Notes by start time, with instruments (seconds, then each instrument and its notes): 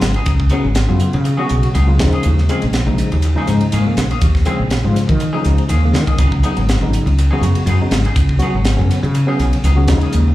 0.01 fretless electric bass G#1, muted clean electric guitar stroke, snare, hi-hat pedal, ride
0.14 tine electric piano B3 D#4, clean electric guitar B3 D#4 G#4, muted fretless electric bass stroke, ride
0.26 fretless electric bass C#2, kick, hi-hat pedal, ride
0.40 muted clean electric guitar stroke, kick
0.49 tine electric piano C#3 F#3 B3 C#4, clean electric guitar F#3 B3 D#4 G#4, hi-hat pedal, ride
0.64 fretless electric bass G#1, muted clean electric guitar stroke
0.75 snare, hi-hat pedal, ride
0.89 fretless electric bass F#2, tine electric piano C#3 F#3 B3 F4, muted clean electric guitar stroke
1.00 hi-hat pedal, ride
1.13 fretless electric bass C#3, muted clean electric guitar stroke, ride
1.25 tine electric piano B3 F4, muted clean electric guitar stroke, hi-hat pedal, ride
1.37 tine electric piano C#3 F#3 B3 F#4, clean electric guitar F#3 B3 D#4 G#4
1.49 fretless electric bass B1, muted clean electric guitar stroke, hi-hat pedal, ride
1.63 ride
1.74 fretless electric bass C#2, clean electric guitar F#3 B3 D#4 G#4, hi-hat pedal, ride
1.87 tine electric piano C#3 F#3 B3 F4, muted clean electric guitar stroke
1.98 fretless electric bass D#2, tine electric piano C#3 F3 G#3 D#4, muted clean electric guitar stroke, kick, snare, hi-hat pedal, ride
2.12 clean electric guitar A#3 C#4 G#4, ride
2.23 fretless electric bass D#2, hi-hat pedal, ride
2.38 muted clean electric guitar stroke, snare
2.49 tine electric piano C#3 F3 G#3 C4, clean electric guitar F3 A#3 C#4 G#4, hi-hat pedal, ride
2.62 fretless electric bass A#1, muted clean electric guitar stroke, ride
2.73 tine electric piano G#3 D#4, snare, hi-hat pedal, ride
2.87 fretless electric bass A#1, tine electric piano C#3 F3 G#3 D#4, muted clean electric guitar stroke
2.98 hi-hat pedal, ride
3.12 fretless electric bass D#2, muted clean electric guitar stroke, ride
3.22 tine electric piano G#3 F4, muted clean electric guitar stroke, hi-hat pedal, ride
3.35 tine electric piano C#3 F3 G#3 D#4, clean electric guitar F3 A#3 C#4 G#4
3.47 fretless electric bass G#2, muted clean electric guitar stroke, snare, hi-hat pedal, ride
3.61 muted fretless electric bass stroke, ride
3.72 fretless electric bass G#2, clean electric guitar F3 A#3 C#4 G#4, hi-hat pedal, ride
3.85 tine electric piano C#3 F3 G#3 A#3, muted fretless electric bass stroke
3.97 fretless electric bass A#1, muted clean electric guitar stroke, snare, hi-hat pedal, ride
4.10 tine electric piano G#3 F4, clean electric guitar A#3 C#4 G#4, muted fretless electric bass stroke, ride
4.21 fretless electric bass D#2, kick, hi-hat pedal, ride
4.35 muted clean electric guitar stroke, kick, snare
4.45 tine electric piano C#3 F3 G#3 C4, clean electric guitar F3 A#3 C#4 G#4, hi-hat pedal, ride
4.59 fretless electric bass A#1, muted clean electric guitar stroke
4.70 tine electric piano G#3 D#4, snare, hi-hat pedal, ride
4.84 fretless electric bass G#2, tine electric piano C#3 F3 G#3 F4, muted clean electric guitar stroke
4.96 snare, hi-hat pedal, ride
5.08 fretless electric bass D#3, muted clean electric guitar stroke, kick, ride
5.20 muted clean electric guitar stroke, hi-hat pedal, ride
5.33 tine electric piano C#3 F3 G#3 D#4, clean electric guitar F3 A#3 C#4 G#4
5.44 fretless electric bass C#2, muted clean electric guitar stroke, snare, hi-hat pedal, ride
5.58 ride
5.68 fretless electric bass D#2, clean electric guitar F3 A#3 C#4 G#4, hi-hat pedal, ride
5.83 tine electric piano C#3 F3 G#3 A#3, muted clean electric guitar stroke
5.93 fretless electric bass D#3, muted clean electric guitar stroke, snare, hi-hat pedal, ride
6.07 tine electric piano G#3 C4, clean electric guitar A#3 C#4 G#4, kick, ride
6.18 fretless electric bass C#2, clean electric guitar F#3 B3 D#4 G#4, kick, hi-hat pedal, ride
6.32 muted clean electric guitar stroke, kick
6.43 tine electric piano C#3 F#3 B3 D#4, clean electric guitar F#3 B3 D#4 G#4, hi-hat pedal, ride
6.57 fretless electric bass G#1, muted clean electric guitar stroke, ride
6.69 snare, hi-hat pedal, ride
6.81 fretless electric bass G#1, tine electric piano C#3 F#3 B3 D#4, muted clean electric guitar stroke
6.93 hi-hat pedal, ride
7.06 fretless electric bass C#2, muted clean electric guitar stroke, ride
7.18 tine electric piano B3 D#4, muted clean electric guitar stroke, hi-hat pedal, ride
7.31 tine electric piano C#3 F#3 B3 F#4, clean electric guitar F#3 B3 D#4 G#4
7.41 fretless electric bass F#2, muted clean electric guitar stroke, hi-hat pedal, ride
7.55 muted fretless electric bass stroke, ride
7.66 fretless electric bass F#2, clean electric guitar F#3 B3 D#4 G#4, hi-hat pedal, ride
7.80 tine electric piano C#3 F#3 B3 D#4, muted fretless electric bass stroke, muted clean electric guitar stroke
7.91 fretless electric bass G#1, muted clean electric guitar stroke, snare, hi-hat pedal, ride
8.05 tine electric piano B3 F#4, clean electric guitar B3 D#4 G#4, muted fretless electric bass stroke, ride
8.16 fretless electric bass C#2, kick, hi-hat pedal, ride
8.29 muted clean electric guitar stroke, kick
8.39 tine electric piano C#3 F#3 B3 F#4, clean electric guitar F#3 B3, hi-hat pedal, ride
8.43 clean electric guitar D#4 G#4
8.54 fretless electric bass G#1, muted clean electric guitar stroke
8.64 tine electric piano B3 C#4, snare, hi-hat pedal, ride
8.76 fretless electric bass F#2, tine electric piano C#3 F#3 B3 C#4, muted clean electric guitar stroke
8.91 snare, hi-hat pedal, ride
9.03 fretless electric bass C#3, muted clean electric guitar stroke, ride
9.14 tine electric piano B3 D#4, muted clean electric guitar stroke, hi-hat pedal, ride
9.27 tine electric piano C#3 F#3 B3 C#4, clean electric guitar F#3 B3 D#4 G#4
9.39 fretless electric bass B1, muted clean electric guitar stroke, snare, hi-hat pedal, ride
9.53 ride
9.63 fretless electric bass C#2, clean electric guitar F#3 B3 D#4 G#4, hi-hat pedal, ride
9.76 tine electric piano C#3 F#3 B3 F#4, muted clean electric guitar stroke
9.88 fretless electric bass D#2, tine electric piano C#3 F3 G#3 D#4, muted clean electric guitar stroke, kick, snare, hi-hat pedal, ride
10.01 clean electric guitar A#3 C#4 G#4, ride
10.13 fretless electric bass D#2, hi-hat pedal, ride
10.28 muted clean electric guitar stroke